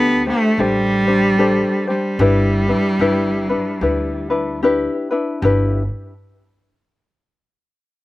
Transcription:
Already playing: D2 B3 D4 G4 A4
0.26 A3 D4 G4 C5
0.57 A1 G3 D4 G4 A4 C5
1.07 D4 G4 C5
1.38 D4 G4 A4 C5
1.87 G3 D4 G4 C5
2.19 G1 D4 E4 G4 B4
2.68 D4 E4 B4
2.99 G1 D4 E4 G4 B4
3.49 D4 E4 B4
3.81 D2 D4 E4 G4 B4
4.30 D4 E4 B4
4.63 D4 E4 G4 B4
5.11 D4 E4 B4
5.42 G1 D4 E4 G4 B4

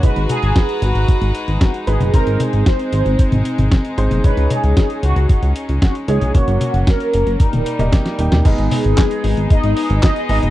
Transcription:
Already playing: F#4
0.03 G#3 D#4 F#4 B4 A#5, kick, closed hi-hat
0.16 G#1, closed hi-hat
0.29 G#4, closed hi-hat, high tom
0.43 G#1, closed hi-hat
0.56 kick, snare, closed hi-hat
0.69 closed hi-hat
0.82 G#1 F#4, closed hi-hat
0.95 G#1, closed hi-hat
1.08 kick, closed hi-hat
1.21 G#1, closed hi-hat
1.35 closed hi-hat
1.48 G#1, closed hi-hat
1.61 F#4, kick, snare, closed hi-hat
1.74 closed hi-hat
1.87 G#1 G#3 D#4 F#4 G#4 B4, closed hi-hat
2.00 F#1, closed hi-hat, high tom
2.14 G#3 C4 D#4 A#4 C5, kick, closed hi-hat
2.27 G#1, closed hi-hat
2.40 G#4, closed hi-hat, high tom
2.53 G#1, closed hi-hat
2.66 C5, kick, snare, closed hi-hat
2.79 closed hi-hat
2.93 G#1, closed hi-hat
3.06 G#1, closed hi-hat
3.19 kick, closed hi-hat
3.32 G#1, closed hi-hat, high tom
3.45 closed hi-hat
3.58 G#1, closed hi-hat, high tom
3.71 kick, snare, closed hi-hat
3.85 closed hi-hat
3.98 G#1 G#3 C4 D#4 C5, closed hi-hat
4.11 F#1, closed hi-hat, high tom
4.24 G#3 C#4 D#4 B4 C#5, kick, closed hi-hat
4.37 C#2, closed hi-hat
4.50 G#4, closed hi-hat, high tom
4.64 C#2, closed hi-hat
4.77 kick, snare, closed hi-hat
4.90 closed hi-hat
5.03 C#2 F#4, closed hi-hat
5.16 C#2, closed hi-hat
5.29 kick, closed hi-hat
5.42 C#2, closed hi-hat
5.56 closed hi-hat
5.69 C#2, closed hi-hat
5.82 F#4, kick, snare, closed hi-hat
5.95 closed hi-hat
6.08 C#2 G#3 C#4 D#4 G#4 C#5, closed hi-hat
6.21 B1, closed hi-hat, high tom
6.35 F#3 A#3 C#4 F#4 C#5, kick, closed hi-hat
6.48 F#1, closed hi-hat
6.61 F#4, closed hi-hat, high tom
6.74 F#1, closed hi-hat
6.87 A#4, kick, snare, closed hi-hat
7.00 closed hi-hat
7.13 F#1, closed hi-hat
7.27 F#1, closed hi-hat
7.40 G3 D#4, kick, closed hi-hat
7.53 D#1, closed hi-hat, high tom
7.66 closed hi-hat
7.79 D#1 A#3 D#4 G4 D#5, closed hi-hat, high tom
7.92 kick, snare, closed hi-hat
8.06 snare, closed hi-hat
8.19 D#1 A#3 D#4 G4 G5, closed hi-hat
8.32 D#2, snare, closed hi-hat, high tom
8.45 G#3 B3 D#4 G#4 D#5, kick, closed hi-hat, crash
8.58 G#1, closed hi-hat
8.71 open hi-hat, high tom
8.84 G#1, closed hi-hat
8.98 kick, snare, clap, closed hi-hat
9.11 closed hi-hat
9.24 G#1, open hi-hat
9.37 G#1, closed hi-hat
9.50 D#4 D#5, kick, closed hi-hat
9.63 G#1, closed hi-hat
9.77 open hi-hat
9.90 G#1, closed hi-hat
10.03 D#4 D#5, kick, snare, clap, closed hi-hat
10.16 closed hi-hat
10.29 G#1 B3 D#4 G#4 D#5, open hi-hat
10.42 F#1, closed hi-hat, high tom

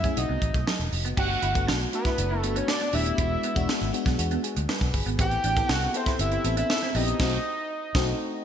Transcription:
Already playing: A3 C#4 E4 G#4 E5
0.03 A3 C#4 E4 G#4, kick, closed hi-hat
0.16 B1 A3 C4 D#4 F#4 D#5, closed hi-hat
0.29 C2 B3
0.42 A1, muted clean electric guitar stroke, kick, closed hi-hat
0.54 B1 A3, kick, closed hi-hat
0.67 F#3, snare
0.79 E1, closed hi-hat
0.92 F1, muted clean electric guitar stroke, open hi-hat
1.05 F#1 B3, closed hi-hat
1.17 G1 A3 B3 D4 F#4 G4 F#5, kick, crash
1.30 muted clean electric guitar stroke
1.42 G1 E4, closed hi-hat
1.54 A3 B3 D4 F#4, kick, closed hi-hat
1.67 B1 D4, snare
1.80 closed hi-hat
1.92 A3 B3 D4 F#4 B4, muted clean electric guitar stroke, closed hi-hat
2.05 E4, kick, snare, closed hi-hat
2.18 F#1 A3 B3 D4 E4, closed hi-hat
2.31 E4
2.39 A3 B3 A4
2.43 G1 D4 F#4, muted clean electric guitar stroke, closed hi-hat
2.56 D4 C#5, closed hi-hat
2.68 D5, muted clean electric guitar stroke, snare
2.81 B3, closed hi-hat
2.92 D#1 A3 B3 D4 G4 E5, open hi-hat
3.06 closed hi-hat
3.18 E1 G#3 B3 D4 E4 F#4, kick, closed hi-hat
3.31 muted clean electric guitar stroke
3.43 B3, closed hi-hat
3.55 E1 G#3 B3 D4 F#4, kick, closed hi-hat
3.69 G#3, snare
3.81 G#1, closed hi-hat
3.93 G#3 B3 D4 F#4, muted clean electric guitar stroke, closed hi-hat
4.06 B1 B3, kick, snare, closed hi-hat
4.17 E2 G#3 B3 D4 F#4, closed hi-hat
4.31 B3, closed hi-hat
4.43 G#4, muted clean electric guitar stroke, closed hi-hat
4.56 D2 G#3, closed hi-hat
4.69 G3 B4, snare
4.81 B1, kick, snare, closed hi-hat
4.94 G1 G#4, muted clean electric guitar stroke, kick, open hi-hat
5.06 G#1 B3, closed hi-hat
5.18 A1 A3 B3 C4 E4 G4 G5, kick, closed hi-hat
5.31 muted clean electric guitar stroke, closed hi-hat
5.44 A1 D4, closed hi-hat
5.56 B3 C4 E4 A4, kick, closed hi-hat
5.69 C2 C4 F#5, snare
5.81 closed hi-hat
5.94 B3 C4 E4 A4 C5, muted clean electric guitar stroke, closed hi-hat
6.06 E4, kick, snare, closed hi-hat
6.19 G1 B3 C4 E4 G4 E5, closed hi-hat
6.31 E4, closed hi-hat
6.44 A1 B3 C4 E4 A4, muted clean electric guitar stroke, closed hi-hat
6.57 D4 E5, closed hi-hat
6.70 muted clean electric guitar stroke, snare
6.82 C4, snare
6.95 A#1 B3 C4 D4 E4 G4 D#5, open hi-hat
7.08 closed hi-hat
7.20 B1 A3 C4 D#4 F#4, kick, snare, crash
7.95 B1 A3 C4 D#4 F#4, kick, snare

